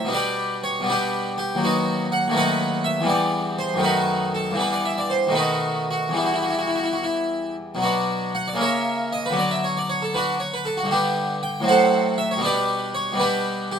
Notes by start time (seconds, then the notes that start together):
0.05 B2 G3 B3
0.10 D4 D5
0.15 G4 B4
0.64 C#5
0.81 B2 G3 B3
0.90 D4 G4 B4
1.38 G4
1.55 D#2 F#3
1.64 B3 D#4 F#4
2.12 F#5
2.28 D#2 F#3 A3
2.33 B3 F#5
2.38 B4 D#5
2.84 E5
3.01 E2 E3 G3
3.05 B3 D5
3.59 C5
3.74 F#2 D#3 A3
3.79 B3 B4
3.84 D#4 F#4
4.35 A4
4.52 G2 E3 G3
4.57 B3 B4
4.73 D5
4.85 E5
4.98 D5
5.10 C5
5.27 B2 D#3 A3
5.32 B3 B4
5.37 D#4 F#4
5.91 F#4
6.09 E2 E3 G3
6.15 B3 E4
6.25 F#4
6.34 E4
6.42 F#4
6.50 E4
6.59 F#4
6.67 E4
6.75 F#4
6.84 E4
6.93 F#4
7.03 E4
7.75 B2 F#3
7.82 B3 D4 F#4
8.35 F#5
8.48 D5
8.54 C#3 A#3 C#4
8.61 A#4 C#5 E5
9.13 D#5
9.26 B4
9.30 D3 F#3 B3
9.39 D5
9.51 E5
9.64 C#5
9.77 D5
9.90 C#5
10.02 A4
10.14 D4 F#4 B4
10.40 C#5
10.54 B4
10.65 A4
10.77 F#4
10.84 G2 D3
10.91 B3 D4 G4
11.43 G5
11.60 A2 F#3 C4
11.68 A4 C5 F#5
12.18 E5
12.31 C#5
12.37 B2 G3 B3
12.41 D4 D5
12.46 G4 B4
12.95 C#5
13.12 B2 G3 B3
13.20 D4 G4 B4
13.72 G4